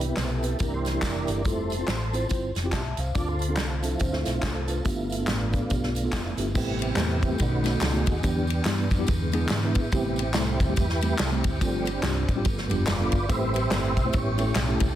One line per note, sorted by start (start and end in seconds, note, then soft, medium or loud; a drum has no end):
0.00 0.10 C2 medium
0.00 0.39 C3 medium
0.00 0.57 B3 medium
0.00 0.30 E4 medium
0.00 0.57 G4 medium
0.00 0.19 B4 loud
0.00 closed hi-hat medium
0.08 0.24 C4 medium
0.08 0.24 E4 medium
0.08 0.24 G4 medium
0.08 0.25 B4 medium
0.16 0.53 B1 medium
0.16 0.31 C5 medium
0.16 snare loud
0.16 clap medium
0.16 closed hi-hat medium
0.16 tambourine medium
0.31 0.59 E4 medium
0.31 0.61 A4 medium
0.42 0.51 C4 medium
0.42 0.51 E4 medium
0.42 0.52 G4 medium
0.42 0.52 B4 medium
0.42 closed hi-hat medium
0.42 tambourine soft
0.59 0.96 C2 loud
0.59 1.25 C3 medium
0.59 1.42 E3 soft
0.59 1.42 A#3 soft
0.59 0.79 C4 medium
0.59 1.42 D4 medium
0.59 0.80 E4 medium
0.59 0.73 E4 medium
0.59 0.80 G4 medium
0.59 0.73 G4 medium
0.59 0.74 A#4 medium
0.59 0.80 A#4 medium
0.59 kick loud
0.59 closed hi-hat medium
0.59 tambourine medium
0.74 1.42 E4 medium
0.74 1.03 G4 medium
0.74 1.04 C5 medium
0.85 snare soft
0.85 closed hi-hat medium
0.85 tambourine soft
0.94 1.09 C4 medium
0.94 1.09 E4 medium
0.94 1.10 G4 medium
0.94 1.10 A#4 medium
1.02 1.43 G4 medium
1.02 1.43 A#4 medium
1.02 1.47 D5 medium
1.02 kick medium
1.02 snare loud
1.02 clap medium
1.02 closed hi-hat medium
1.02 tambourine medium
1.27 1.45 G1 medium
1.27 1.37 C4 medium
1.27 1.37 E4 medium
1.27 1.37 G4 medium
1.27 1.38 A4 medium
1.27 closed hi-hat medium
1.27 tambourine medium
1.45 1.81 F1 medium
1.45 1.76 G3 medium
1.45 1.76 A3 soft
1.45 1.65 C4 medium
1.45 1.65 E4 medium
1.45 1.77 E4 medium
1.45 1.65 F4 medium
1.45 2.27 A4 medium
1.45 1.66 A4 medium
1.45 2.27 C5 medium
1.45 kick loud
1.45 closed hi-hat medium
1.45 tambourine medium
1.70 closed hi-hat medium
1.70 tambourine medium
1.78 1.94 C4 medium
1.78 1.95 E4 medium
1.78 1.95 F4 medium
1.78 1.95 C5 medium
1.87 2.24 A1 medium
1.87 snare loud
1.87 clap medium
1.87 closed hi-hat medium
1.87 tambourine medium
2.13 2.22 C4 medium
2.13 2.22 E4 medium
2.13 2.23 F4 medium
2.13 2.23 C5 medium
2.13 closed hi-hat medium
2.13 tambourine soft
2.29 2.52 G1 medium
2.29 2.49 C4 medium
2.29 2.50 E4 medium
2.29 2.50 F4 medium
2.29 2.50 C5 medium
2.29 kick medium
2.29 closed hi-hat medium
2.29 tambourine medium
2.55 2.70 F1 medium
2.55 snare soft
2.55 closed hi-hat medium
2.55 tambourine soft
2.64 2.79 C4 medium
2.64 2.80 E4 medium
2.64 2.80 F4 medium
2.64 2.80 G4 loud
2.72 2.95 B1 medium
2.72 2.98 E5 medium
2.72 2.97 A5 medium
2.72 kick medium
2.72 snare loud
2.72 clap medium
2.72 closed hi-hat medium
2.72 tambourine medium
2.97 3.13 C2 medium
2.97 3.40 C5 soft
2.97 3.39 F5 medium
2.97 closed hi-hat medium
2.97 tambourine soft
3.15 3.58 D2 loud
3.15 3.80 D3 medium
3.15 3.35 C4 medium
3.15 3.35 D4 medium
3.15 3.28 F4 medium
3.15 3.35 F4 medium
3.15 3.28 A4 medium
3.15 3.36 A4 medium
3.15 3.28 D5 loud
3.15 kick loud
3.15 closed hi-hat medium
3.15 tambourine medium
3.29 3.69 F4 medium
3.29 3.68 A4 medium
3.29 3.59 C5 medium
3.39 closed hi-hat medium
3.39 tambourine soft
3.49 3.64 C4 medium
3.49 3.65 D4 medium
3.49 3.65 F4 medium
3.49 3.65 A4 medium
3.56 3.94 C2 medium
3.56 3.62 B4 loud
3.56 snare loud
3.56 clap medium
3.56 closed hi-hat medium
3.56 tambourine medium
3.69 3.81 C4 medium
3.69 4.52 F4 medium
3.69 4.01 A4 medium
3.82 4.09 F3 soft
3.82 3.99 C4 soft
3.82 3.92 C4 medium
3.82 3.92 D4 medium
3.82 4.09 E4 medium
3.82 3.93 F4 medium
3.82 3.93 A4 medium
3.82 closed hi-hat medium
3.82 tambourine soft
3.99 4.22 D2 medium
3.99 4.20 C4 medium
3.99 4.12 C4 medium
3.99 4.20 D4 medium
3.99 4.21 F4 medium
3.99 4.06 G4 medium
3.99 4.21 C5 medium
3.99 kick loud
3.99 closed hi-hat medium
3.99 tambourine medium
4.12 4.82 A3 medium
4.12 4.53 C4 medium
4.12 4.44 E4 medium
4.12 snare soft
4.25 4.40 B1 medium
4.25 snare soft
4.25 closed hi-hat medium
4.25 tambourine soft
4.34 4.49 C4 medium
4.34 4.50 D4 medium
4.34 4.50 F4 medium
4.34 4.50 A4 medium
4.42 4.56 D4 medium
4.42 kick medium
4.42 snare loud
4.42 clap medium
4.42 closed hi-hat medium
4.42 tambourine medium
4.54 4.83 C4 medium
4.54 4.83 F4 medium
4.54 4.86 A4 medium
4.67 4.77 C4 medium
4.67 4.77 D4 medium
4.67 4.77 F4 medium
4.67 4.78 B4 medium
4.67 closed hi-hat medium
4.67 tambourine medium
4.84 5.22 G1 medium
4.84 5.49 G2 medium
4.84 6.51 A3 medium
4.84 5.04 B3 medium
4.84 5.27 B3 medium
4.84 5.05 D4 medium
4.84 5.29 E4 medium
4.84 5.28 F4 medium
4.84 5.05 F4 medium
4.84 5.05 G4 medium
4.84 kick loud
4.84 closed hi-hat medium
4.84 tambourine medium
5.10 closed hi-hat medium
5.10 tambourine soft
5.18 5.34 B3 medium
5.18 5.34 D4 medium
5.18 5.35 F4 medium
5.18 5.35 A4 medium
5.27 5.64 A1 medium
5.27 6.12 B3 medium
5.27 6.34 D4 medium
5.27 6.35 F4 medium
5.27 snare loud
5.27 clap medium
5.27 closed hi-hat medium
5.27 tambourine medium
5.53 5.62 B3 medium
5.53 5.62 D4 medium
5.53 5.63 F4 medium
5.53 5.63 A4 medium
5.53 kick medium
5.53 closed hi-hat medium
5.53 tambourine soft
5.69 6.07 B1 medium
5.69 5.89 B3 medium
5.69 5.90 D4 medium
5.69 5.90 F4 medium
5.69 5.91 G4 medium
5.69 kick loud
5.69 closed hi-hat medium
5.69 tambourine medium
5.83 snare soft
5.95 closed hi-hat medium
5.95 tambourine soft
6.03 6.19 B3 medium
6.03 6.19 D4 medium
6.03 6.20 F4 medium
6.03 6.20 A4 medium
6.12 6.52 B3 medium
6.12 6.52 E4 medium
6.12 kick medium
6.12 snare loud
6.12 clap medium
6.12 closed hi-hat medium
6.12 tambourine medium
6.37 6.52 G1 medium
6.37 6.46 B3 medium
6.37 6.47 D4 medium
6.37 6.47 F4 medium
6.37 6.47 G4 medium
6.37 closed hi-hat medium
6.37 tambourine medium
6.54 6.91 A1 medium
6.54 7.19 A2 medium
6.54 7.36 C3 medium
6.54 7.37 G3 medium
6.54 6.80 A3 medium
6.54 7.37 B3 medium
6.54 6.80 C4 medium
6.54 7.37 C4 medium
6.54 6.81 E4 medium
6.54 7.37 E4 medium
6.54 6.81 G4 medium
6.54 7.43 G4 loud
6.54 6.81 A4 medium
6.54 kick loud
6.54 crash loud
6.54 tambourine medium
6.79 ride bell medium
6.79 tambourine medium
6.96 7.33 E2 loud
6.96 7.16 A3 medium
6.96 7.16 C4 medium
6.96 7.16 E4 medium
6.96 7.17 G4 medium
6.96 7.17 A4 medium
6.96 snare loud
6.96 clap medium
6.96 ride bell medium
6.96 tambourine medium
7.22 kick medium
7.22 ride bell medium
7.22 tambourine soft
7.30 7.39 A3 medium
7.30 7.39 C4 medium
7.30 7.40 E4 medium
7.30 7.40 G4 medium
7.30 7.40 A4 medium
7.38 7.76 B1 loud
7.38 8.03 B2 medium
7.38 8.04 D#3 soft
7.38 8.05 A3 soft
7.38 8.05 C#4 medium
7.38 7.95 D#4 medium
7.38 8.21 F#4 medium
7.38 7.80 B4 medium
7.38 kick loud
7.38 ride bell medium
7.38 tambourine medium
7.64 7.77 A3 medium
7.64 7.78 B3 medium
7.64 7.78 D#4 medium
7.64 7.78 F#4 medium
7.64 7.78 A4 medium
7.64 snare soft
7.64 ride bell medium
7.64 tambourine medium
7.81 8.03 C#2 loud
7.81 7.95 A4 loud
7.81 snare loud
7.81 clap medium
7.81 ride bell medium
7.81 tambourine loud
7.93 8.11 A3 medium
7.93 8.11 B3 medium
7.93 8.11 D#4 medium
7.93 8.23 D#4 medium
7.93 8.11 F#4 medium
7.93 8.23 G#4 medium
7.93 8.11 A4 medium
8.06 8.21 D#2 medium
8.06 kick medium
8.06 ride bell medium
8.06 tambourine medium
8.22 8.60 E2 medium
8.22 8.54 D3 medium
8.22 8.87 E3 medium
8.22 8.49 G3 medium
8.22 8.54 G3 medium
8.22 8.49 B3 medium
8.22 9.04 B3 medium
8.22 8.49 D4 medium
8.22 9.04 D4 medium
8.22 8.50 E4 medium
8.22 8.63 G4 medium
8.22 8.50 G4 medium
8.22 kick loud
8.22 ride bell medium
8.22 tambourine medium
8.47 ride bell medium
8.47 tambourine medium
8.65 8.87 G2 loud
8.65 8.85 G3 medium
8.65 8.85 B3 medium
8.65 8.85 D4 medium
8.65 8.86 E4 medium
8.65 8.86 G4 medium
8.65 snare loud
8.65 clap medium
8.65 ride bell medium
8.65 tambourine loud
8.90 9.06 F2 medium
8.90 kick loud
8.90 ride bell medium
8.90 tambourine medium
8.98 9.08 G3 medium
8.98 9.08 B3 medium
8.98 9.08 D4 medium
8.98 9.08 E4 medium
8.98 9.09 G4 loud
9.07 9.44 E2 loud
9.07 9.72 D3 medium
9.07 9.72 E3 medium
9.07 9.51 G#3 soft
9.07 9.52 B3 medium
9.07 kick loud
9.07 ride bell medium
9.07 tambourine medium
9.32 9.46 G#3 medium
9.32 9.46 B3 medium
9.32 9.47 D4 medium
9.32 9.47 E4 medium
9.32 9.47 G#4 loud
9.32 ride bell medium
9.32 tambourine medium
9.46 9.51 D#4 medium
9.46 clap medium
9.46 tambourine medium
9.50 9.86 G#2 medium
9.50 9.91 G#3 medium
9.50 9.91 B3 medium
9.50 9.93 E4 medium
9.50 snare loud
9.50 ride bell medium
9.63 9.80 G#3 medium
9.63 9.80 B3 medium
9.63 9.81 D4 medium
9.63 9.81 E4 medium
9.63 9.81 B4 medium
9.75 kick medium
9.75 ride bell medium
9.75 tambourine medium
9.92 10.35 A1 loud
9.92 10.56 A2 medium
9.92 10.23 C3 medium
9.92 10.18 G3 medium
9.92 10.23 G3 medium
9.92 10.18 A3 medium
9.92 10.23 B3 medium
9.92 10.19 C4 medium
9.92 10.74 C4 medium
9.92 10.19 E4 medium
9.92 10.74 E4 medium
9.92 10.73 G4 loud
9.92 10.19 G4 medium
9.92 kick loud
9.92 ride bell medium
9.92 tambourine medium
10.16 ride bell medium
10.16 tambourine medium
10.34 10.56 C2 medium
10.34 10.54 G3 medium
10.34 10.54 A3 medium
10.34 10.55 C4 medium
10.34 10.55 E4 medium
10.34 10.55 A4 medium
10.34 snare loud
10.34 clap medium
10.34 ride bell medium
10.34 tambourine medium
10.60 10.74 D2 medium
10.60 kick medium
10.60 ride bell medium
10.60 tambourine medium
10.69 10.84 G3 medium
10.69 10.84 A3 medium
10.69 10.84 C4 medium
10.69 10.84 E4 medium
10.69 10.85 G4 medium
10.76 11.13 E2 loud
10.76 11.31 E4 medium
10.76 11.31 G4 medium
10.76 11.17 B4 medium
10.76 kick loud
10.76 ride bell medium
10.76 tambourine medium
10.89 snare soft
11.01 11.15 G3 medium
11.01 11.15 A3 medium
11.01 11.15 C4 medium
11.01 11.16 E4 medium
11.01 11.16 G4 medium
11.01 ride bell medium
11.01 tambourine medium
11.19 11.41 C2 medium
11.19 11.31 A4 medium
11.19 snare loud
11.19 clap medium
11.19 ride bell medium
11.19 tambourine loud
11.31 11.49 G3 medium
11.31 11.49 A3 medium
11.31 11.59 C4 medium
11.31 11.49 C4 medium
11.31 11.59 E4 medium
11.31 11.49 E4 medium
11.31 11.61 G4 medium
11.31 11.49 G4 medium
11.44 11.59 D2 loud
11.44 kick medium
11.44 ride bell medium
11.44 tambourine medium
11.60 11.97 G1 medium
11.60 12.25 G2 medium
11.60 11.91 F3 medium
11.60 11.87 G3 medium
11.60 11.92 A3 medium
11.60 11.87 C4 medium
11.60 12.42 C4 medium
11.60 12.41 D4 medium
11.60 11.87 D4 medium
11.60 11.87 F4 medium
11.60 12.01 G4 medium
11.60 11.88 G4 medium
11.60 kick loud
11.60 ride bell medium
11.60 tambourine medium
11.85 ride bell medium
11.85 tambourine medium
12.03 12.24 C2 medium
12.03 12.22 G3 medium
12.03 12.23 C4 medium
12.03 12.23 D4 medium
12.03 12.23 F4 medium
12.03 12.23 G4 medium
12.03 snare loud
12.03 clap medium
12.03 ride bell medium
12.03 tambourine medium
12.28 12.43 A1 medium
12.28 kick medium
12.28 ride bell medium
12.28 tambourine medium
12.36 12.45 G3 medium
12.36 12.45 C4 medium
12.36 12.45 D4 medium
12.36 12.45 F4 medium
12.36 12.46 G4 loud
12.44 12.67 G1 loud
12.44 13.09 G2 medium
12.44 12.75 F3 medium
12.44 12.75 A3 soft
12.44 12.76 B3 medium
12.44 kick loud
12.44 ride bell medium
12.44 tambourine medium
12.58 snare soft
12.69 12.85 F1 medium
12.69 12.83 G3 medium
12.69 12.83 B3 medium
12.69 12.83 D4 medium
12.69 12.83 F4 medium
12.69 12.84 G4 loud
12.69 ride bell medium
12.69 tambourine medium
12.85 13.09 F1 medium
12.85 13.26 F4 medium
12.85 13.26 B4 medium
12.85 13.30 D5 loud
12.85 snare loud
12.85 clap medium
12.85 ride bell medium
12.85 tambourine medium
12.99 13.17 G3 medium
12.99 13.17 B3 medium
12.99 13.17 D4 medium
12.99 13.17 F4 medium
12.99 13.18 A4 medium
13.12 13.27 G1 medium
13.12 kick loud
13.12 ride bell medium
13.12 tambourine medium
13.29 13.65 A1 loud
13.29 13.93 A2 medium
13.29 13.93 G3 medium
13.29 13.55 A3 medium
13.29 13.55 C4 medium
13.29 13.94 C4 medium
13.29 13.55 E4 medium
13.29 14.10 G4 medium
13.29 13.55 G4 medium
13.29 13.56 A4 medium
13.29 13.93 B4 soft
13.29 14.10 C5 medium
13.29 14.16 E5 loud
13.29 kick loud
13.29 ride bell medium
13.29 tambourine medium
13.54 ride bell medium
13.54 tambourine medium
13.71 13.93 G1 loud
13.71 13.90 A3 medium
13.71 13.91 C4 medium
13.71 13.91 E4 medium
13.71 13.91 G4 medium
13.71 13.91 A4 medium
13.71 snare loud
13.71 clap medium
13.71 ride bell medium
13.71 tambourine medium
13.97 14.11 B1 medium
13.97 kick medium
13.97 ride bell medium
13.97 tambourine medium
14.05 14.13 A3 medium
14.05 14.14 C4 medium
14.05 14.14 E4 medium
14.05 14.14 G4 medium
14.05 14.14 C5 medium
14.13 14.50 A1 loud
14.13 14.77 A2 medium
14.13 14.44 G3 soft
14.13 14.44 B3 soft
14.13 14.45 C#4 medium
14.13 14.56 E4 medium
14.13 14.95 G4 medium
14.13 14.57 C#5 medium
14.13 kick loud
14.13 ride bell medium
14.13 tambourine medium
14.37 14.51 A3 medium
14.37 14.51 C#4 medium
14.37 14.52 E4 medium
14.37 14.52 G4 medium
14.37 14.52 A4 medium
14.37 ride bell medium
14.37 tambourine medium
14.54 14.77 B1 medium
14.54 14.95 C#4 medium
14.54 14.95 E4 medium
14.54 14.95 A4 medium
14.54 snare loud
14.54 clap medium
14.54 ride bell medium
14.54 tambourine medium
14.67 14.85 A3 medium
14.67 14.85 C#4 medium
14.67 14.86 E4 medium
14.67 14.86 G4 medium
14.67 14.86 A4 medium
14.80 14.95 C#2 medium
14.80 kick loud
14.80 ride bell medium
14.80 tambourine medium